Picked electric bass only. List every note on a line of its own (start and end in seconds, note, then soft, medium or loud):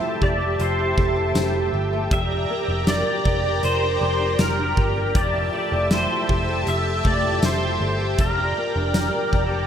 0.22 0.55 F1 medium
0.59 0.93 F1 medium
0.98 1.31 F1 medium
1.35 1.68 F1 loud
1.73 2.07 G1 medium
2.11 2.45 F1 medium
2.68 3.02 F1 medium
3.26 3.59 F1 medium
3.63 3.97 F1 loud
4.01 4.35 F1 medium
4.39 4.72 F1 loud
4.77 5.11 G1 medium
5.15 5.49 F1 loud
5.72 6.05 F1 loud
6.29 6.63 F1 medium
6.67 7.00 F1 medium
7.05 7.38 F1 medium
7.43 7.76 F1 loud
7.81 8.14 G1 loud
8.19 8.52 F1 medium
8.76 9.09 F1 loud
9.33 9.66 F1 loud